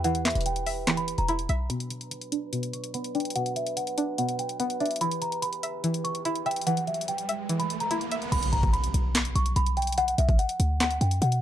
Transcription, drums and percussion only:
0.04 closed hi-hat medium
0.15 closed hi-hat medium
0.25 snare medium
0.25 clap medium
0.25 closed hi-hat medium
0.30 closed hi-hat medium
0.35 closed hi-hat medium
0.41 closed hi-hat medium
0.46 closed hi-hat medium
0.56 closed hi-hat medium
0.67 open hi-hat medium
0.87 snare loud
0.87 clap loud
0.87 closed hi-hat loud
0.97 closed hi-hat medium
1.08 closed hi-hat medium
1.18 closed hi-hat medium
1.28 closed hi-hat medium
1.39 closed hi-hat medium
1.49 closed hi-hat medium
1.70 closed hi-hat medium
1.80 closed hi-hat medium
1.90 closed hi-hat medium
2.01 closed hi-hat medium
2.11 closed hi-hat medium
2.21 closed hi-hat medium
2.32 closed hi-hat medium
2.53 closed hi-hat medium
2.63 closed hi-hat medium
2.73 closed hi-hat medium
2.84 closed hi-hat medium
2.94 closed hi-hat medium
3.04 closed hi-hat medium
3.15 closed hi-hat soft
3.20 closed hi-hat soft
3.25 closed hi-hat medium
3.30 closed hi-hat medium
3.36 closed hi-hat medium
3.46 closed hi-hat medium
3.56 closed hi-hat medium
3.67 closed hi-hat medium
3.77 closed hi-hat medium
3.87 closed hi-hat medium
3.98 closed hi-hat medium
4.18 closed hi-hat medium
4.29 closed hi-hat medium
4.39 closed hi-hat medium
4.49 closed hi-hat medium
4.60 closed hi-hat medium
4.70 closed hi-hat medium
4.80 closed hi-hat soft
4.86 closed hi-hat medium
4.91 closed hi-hat medium
4.96 closed hi-hat medium
5.01 closed hi-hat medium
5.11 closed hi-hat medium
5.22 closed hi-hat medium
5.32 closed hi-hat medium
5.42 closed hi-hat medium
5.53 closed hi-hat medium
5.63 closed hi-hat medium
5.84 closed hi-hat medium
5.94 closed hi-hat medium
6.05 closed hi-hat medium
6.15 closed hi-hat medium
6.25 closed hi-hat medium
6.36 closed hi-hat medium
6.46 closed hi-hat soft
6.51 closed hi-hat medium
6.56 closed hi-hat medium
6.61 closed hi-hat medium
6.67 closed hi-hat medium
6.77 closed hi-hat medium
6.87 closed hi-hat soft
6.94 closed hi-hat medium
7.01 closed hi-hat medium
7.08 closed hi-hat medium
7.18 closed hi-hat medium
7.29 closed hi-hat medium
7.49 closed hi-hat medium
7.60 closed hi-hat medium
7.70 closed hi-hat medium
7.80 closed hi-hat medium
7.91 closed hi-hat medium
8.01 closed hi-hat medium
8.11 closed hi-hat medium
8.22 closed hi-hat soft
8.32 closed hi-hat medium
8.32 crash medium
8.43 closed hi-hat medium
8.53 closed hi-hat medium
8.63 kick medium
8.63 closed hi-hat medium
8.73 closed hi-hat medium
8.84 closed hi-hat medium
8.94 closed hi-hat medium
9.15 snare loud
9.15 clap loud
9.15 closed hi-hat medium
9.25 closed hi-hat medium
9.36 closed hi-hat medium
9.46 closed hi-hat medium
9.56 closed hi-hat medium
9.66 closed hi-hat medium
9.77 closed hi-hat soft
9.82 closed hi-hat medium
9.87 closed hi-hat medium
9.92 closed hi-hat medium
9.98 closed hi-hat medium
10.08 closed hi-hat medium
10.18 closed hi-hat medium
10.29 kick medium
10.29 closed hi-hat medium
10.39 closed hi-hat medium
10.49 closed hi-hat medium
10.60 closed hi-hat medium
10.80 snare loud
10.80 clap loud
10.80 closed hi-hat loud
10.91 closed hi-hat medium
11.01 closed hi-hat medium
11.11 closed hi-hat medium
11.22 closed hi-hat medium
11.32 closed hi-hat medium

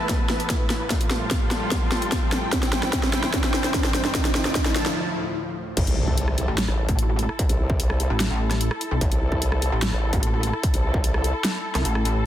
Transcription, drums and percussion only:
0.09 kick loud
0.09 snare medium
0.09 closed hi-hat medium
0.30 snare medium
0.40 closed hi-hat soft
0.50 kick medium
0.50 snare medium
0.50 closed hi-hat medium
0.70 snare medium
0.70 closed hi-hat medium
0.90 kick loud
0.90 snare medium
0.90 closed hi-hat medium
1.01 closed hi-hat soft
1.11 snare medium
1.31 kick loud
1.31 snare medium
1.31 closed hi-hat medium
1.51 snare medium
1.51 closed hi-hat medium
1.71 kick loud
1.71 snare medium
1.71 closed hi-hat medium
1.92 snare medium
2.02 closed hi-hat soft
2.12 kick loud
2.12 snare medium
2.12 closed hi-hat medium
2.32 snare medium
2.32 closed hi-hat soft
2.53 kick loud
2.53 snare medium
2.53 closed hi-hat medium
2.63 snare medium
2.63 closed hi-hat soft
2.73 snare loud
2.83 snare medium
2.93 kick medium
2.93 snare loud
2.93 closed hi-hat medium
3.03 snare medium
3.13 snare loud
3.13 closed hi-hat medium
3.24 snare medium
3.34 kick loud
3.34 snare loud
3.34 closed hi-hat medium
3.44 snare medium
3.54 snare loud
3.64 snare medium
3.64 closed hi-hat medium
3.74 kick loud
3.74 snare loud
3.74 closed hi-hat medium
3.84 snare medium
3.94 snare loud
3.94 closed hi-hat medium
4.05 snare medium
4.15 kick loud
4.15 snare loud
4.15 closed hi-hat medium
4.25 snare medium
4.25 closed hi-hat medium
4.35 snare loud
4.45 snare medium
4.55 kick loud
4.55 snare loud
4.55 closed hi-hat medium
4.66 snare medium
4.76 snare loud
4.76 closed hi-hat medium
4.86 snare loud
5.77 kick loud
5.77 closed hi-hat medium
5.77 crash loud
5.87 closed hi-hat medium
6.08 kick medium
6.18 closed hi-hat medium
6.28 cross-stick medium
6.38 closed hi-hat medium
6.58 snare loud
6.58 closed hi-hat medium
6.68 cross-stick medium
6.89 kick loud
6.89 closed hi-hat medium
6.99 closed hi-hat medium
7.19 closed hi-hat medium
7.29 cross-stick medium
7.39 kick loud
7.39 closed hi-hat medium
7.49 closed hi-hat medium
7.70 kick loud
7.80 closed hi-hat medium
7.90 cross-stick medium
8.00 closed hi-hat medium
8.20 snare loud
8.20 closed hi-hat medium
8.51 cross-stick medium
8.51 snare soft
8.51 closed hi-hat medium
8.61 closed hi-hat medium
8.71 cross-stick medium
8.81 closed hi-hat medium
9.01 kick loud
9.01 closed hi-hat medium
9.12 closed hi-hat medium
9.32 kick medium
9.42 closed hi-hat medium
9.52 cross-stick medium
9.62 closed hi-hat medium
9.82 snare loud
9.82 closed hi-hat medium
9.93 cross-stick medium
10.13 kick loud
10.13 closed hi-hat medium
10.23 closed hi-hat medium
10.43 closed hi-hat medium
10.53 cross-stick medium
10.63 kick loud
10.63 closed hi-hat medium
10.74 closed hi-hat medium
10.94 kick loud
11.04 closed hi-hat medium
11.14 cross-stick medium
11.24 closed hi-hat medium
11.45 snare loud
11.45 closed hi-hat medium
11.75 cross-stick medium
11.75 snare soft
11.75 closed hi-hat medium
11.85 closed hi-hat medium
11.95 cross-stick medium
12.05 closed hi-hat medium

